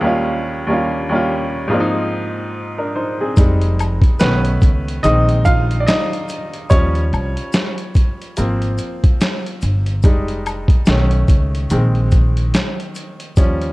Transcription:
Already playing: G#3
0.01 D#2 G3 A#3
0.05 C#4 F4
0.67 D#2 G3 A#3
0.71 C#4 F4
1.09 D#2 G3 A#3
1.14 C#4 F4
1.68 G#2 F3 A#3
1.72 C4 D4
1.80 D#4
2.78 D4 A#4
2.96 D#4 C5
3.20 C4 G#4
3.37 F1 G3 G#3 D#4, kick, closed hi-hat, maracas
3.61 closed hi-hat
3.79 closed hi-hat, high woodblock, maracas
4.02 kick, closed hi-hat
4.19 B1 D#3 A3 B3 C#4 B4, snare, closed hi-hat, maracas
4.45 closed hi-hat
4.62 C#2, kick, closed hi-hat, maracas
4.88 closed hi-hat
5.03 A#1 D#3 G#3 C4 D#4 D#5, closed hi-hat, maracas
5.29 closed hi-hat
5.45 F4 F5, kick, closed hi-hat, maracas
5.71 closed hi-hat
5.80 D5
5.87 D#4 D#5, snare, closed hi-hat, maracas
6.13 closed hi-hat
6.29 closed hi-hat, maracas
6.53 closed hi-hat
6.70 D#2 F3 G3 C#4 C#5, kick, closed hi-hat, maracas
6.95 closed hi-hat
7.13 C2, closed hi-hat, high woodblock, maracas
7.37 closed hi-hat
7.53 snare, closed hi-hat, maracas
7.78 closed hi-hat
7.95 kick, closed hi-hat, maracas
8.22 closed hi-hat
8.37 G#1 F3 A#3 C4, closed hi-hat, maracas
8.62 closed hi-hat
8.78 closed hi-hat, maracas
9.04 kick, closed hi-hat
9.21 snare, closed hi-hat, maracas
9.46 closed hi-hat
9.62 G1, closed hi-hat, maracas
9.86 closed hi-hat
10.03 F1 G3 G#3 D#4, kick, closed hi-hat, maracas
10.28 closed hi-hat
10.46 closed hi-hat, high woodblock, maracas
10.68 kick, closed hi-hat
10.86 B1 D#3 A3 C#4, snare, closed hi-hat, maracas
11.11 closed hi-hat
11.28 C#2, kick, closed hi-hat, maracas
11.55 closed hi-hat
11.70 A#1 D#3 G#3 C4, closed hi-hat, maracas
11.95 closed hi-hat
12.11 kick, closed hi-hat, maracas
12.37 closed hi-hat
12.54 snare, closed hi-hat, maracas
12.80 closed hi-hat
12.95 closed hi-hat, maracas
13.20 closed hi-hat
13.36 D#2 F3 G3 C#4, kick, closed hi-hat, maracas
13.62 closed hi-hat

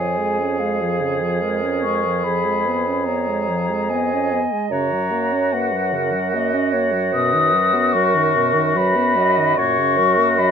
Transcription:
Already playing: F2 F3 G#4 C#5 G#5
0.17 G#3 G#4
0.39 C#4
0.60 G#3 F5
0.80 F3
1.01 C#3
1.20 F3
1.42 G#3 A#4
1.63 C#4
1.83 G#3 C#6
2.04 F3
2.24 F3 G#4 B5
2.45 G#3
2.65 B3 B4
2.86 C#4
3.05 B3 C#5 A#5
3.28 G#3
3.49 F3
3.69 G#3
3.88 B3 D#5 G#5
4.13 C#4
4.32 B3
4.52 G#3
4.70 F#2 C#3 F#4 C#5 A#5
4.92 F#3
5.11 A#3
5.32 C#4
5.53 A#3 B4 F#5
5.73 F#3
5.93 C#3 A#4
6.13 F#3
6.34 A#3 D#5
6.53 C#4
6.73 A#3 C#5
6.92 F#3
7.13 B2 B4 D#6
7.33 D#3
7.54 F#3
7.74 B3
7.93 F#3 A#4 C#6
8.15 D#3
8.35 B2
8.53 D#3
8.75 F#3 B4 B5
8.96 B3
9.16 F#3 D#5
9.38 D#3
9.57 F#2 A#2 F#4 C#5 C#6
9.78 C#3
9.98 F#3 A#4
10.18 A#3
10.38 F#3 D#5 B5

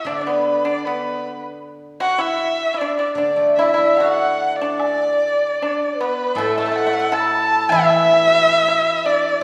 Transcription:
0.05 D3 D4 D5
0.21 D4
0.27 B3 B4
0.65 D4 D5
0.85 B3 B4
2.00 F#4 F#5
2.18 E4 E5
2.74 E4 D5
2.81 D4
2.97 D4 D5
3.15 D3 D4 D5
3.36 A3
3.56 D4 E4 E5
3.62 D5
3.68 E5
3.74 E4
3.96 F#4 A4 F#5
4.04 E5
4.11 F#5
4.56 D5
4.61 D4
4.80 high woodblock
5.62 D4
5.97 B3 B4
6.35 A2 A3 A4, high woodblock
6.57 A3 A4
6.66 A3 A5
6.72 A3 F#5
6.78 A3
6.87 A3
6.93 A3
7.00 A3
7.11 A4 A5
7.20 B5
7.27 A5
7.35 B5
7.45 A5
7.69 E3 E4 E5
7.89 B3, high woodblock
8.08 E4
8.27 F#4
8.46 B4
8.68 E4
8.97 E5
9.04 D4 D5

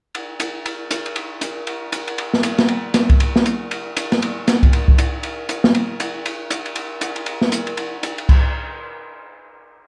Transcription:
0.15 ride
0.40 hi-hat pedal, ride
0.66 ride
0.91 hi-hat pedal, ride
1.06 ride
1.16 ride
1.41 hi-hat pedal, ride
1.67 ride
1.92 hi-hat pedal, ride
2.08 ride
2.18 ride
2.34 snare
2.43 hi-hat pedal, ride
2.58 snare, ride
2.68 ride
2.94 snare, hi-hat pedal, ride
3.10 kick, ride
3.20 ride
3.36 snare
3.46 hi-hat pedal, ride
3.71 ride
3.97 hi-hat pedal, ride
4.12 snare, ride
4.22 ride
4.47 snare, hi-hat pedal, ride
4.63 kick, ride
4.73 ride
4.88 kick
4.98 hi-hat pedal, ride
5.23 ride
5.49 hi-hat pedal, ride
5.64 snare
5.75 ride
6.00 hi-hat pedal, ride
6.26 ride
6.50 hi-hat pedal, ride
6.66 ride
6.76 ride
7.01 hi-hat pedal, ride
7.16 ride
7.26 ride
7.41 snare
7.52 hi-hat pedal, ride
7.67 ride
7.77 ride
8.03 hi-hat pedal, ride
8.18 ride
8.29 kick, crash

